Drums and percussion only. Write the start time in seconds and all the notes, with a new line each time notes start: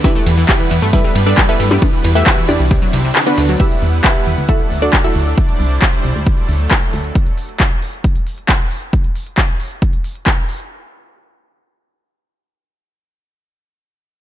0.04 kick, closed hi-hat, percussion blips
0.15 closed hi-hat
0.27 open hi-hat, ride
0.38 closed hi-hat
0.49 kick, clap, closed hi-hat
0.60 closed hi-hat
0.71 open hi-hat, ride
0.82 closed hi-hat
0.93 kick, closed hi-hat
1.04 closed hi-hat
1.15 open hi-hat, ride
1.27 closed hi-hat
1.38 kick, clap, closed hi-hat
1.49 closed hi-hat
1.60 open hi-hat, ride
1.71 closed hi-hat, percussion blips
1.82 kick, closed hi-hat, percussion blips
1.93 closed hi-hat
2.04 open hi-hat, ride
2.15 closed hi-hat
2.27 kick, clap, closed hi-hat
2.38 open hi-hat
2.49 open hi-hat, ride, percussion blips
2.60 closed hi-hat
2.71 kick, closed hi-hat
2.82 closed hi-hat
2.93 open hi-hat, ride
3.04 closed hi-hat
3.15 clap, closed hi-hat
3.27 closed hi-hat
3.38 open hi-hat, ride
3.49 closed hi-hat
3.60 kick, closed hi-hat
3.71 closed hi-hat
3.82 open hi-hat
3.93 closed hi-hat
4.04 kick, clap, closed hi-hat
4.15 closed hi-hat
4.27 open hi-hat
4.38 closed hi-hat
4.49 kick, closed hi-hat
4.60 closed hi-hat
4.71 open hi-hat
4.82 closed hi-hat
4.93 kick, clap, closed hi-hat
5.04 closed hi-hat
5.15 open hi-hat
5.27 closed hi-hat
5.38 kick, closed hi-hat
5.49 closed hi-hat
5.60 open hi-hat
5.71 closed hi-hat
5.82 kick, clap, closed hi-hat
5.93 closed hi-hat
6.04 open hi-hat
6.15 closed hi-hat
6.27 kick, closed hi-hat
6.38 closed hi-hat
6.49 open hi-hat
6.60 closed hi-hat
6.71 kick, clap, closed hi-hat
6.82 closed hi-hat
6.93 open hi-hat
7.04 closed hi-hat
7.15 kick, closed hi-hat
7.27 closed hi-hat
7.38 open hi-hat
7.49 closed hi-hat
7.60 kick, clap, closed hi-hat
7.71 closed hi-hat
7.82 open hi-hat
7.93 closed hi-hat
8.04 kick, closed hi-hat
8.16 closed hi-hat
8.27 open hi-hat
8.38 closed hi-hat
8.49 kick, clap, closed hi-hat
8.60 closed hi-hat
8.71 open hi-hat
8.82 closed hi-hat
8.93 kick, closed hi-hat
9.04 closed hi-hat
9.15 open hi-hat
9.27 closed hi-hat
9.38 kick, clap, closed hi-hat
9.49 closed hi-hat
9.60 open hi-hat
9.71 closed hi-hat
9.82 kick, closed hi-hat
9.93 closed hi-hat
10.04 open hi-hat
10.15 closed hi-hat
10.27 kick, clap, closed hi-hat
10.38 closed hi-hat
10.49 open hi-hat
10.60 closed hi-hat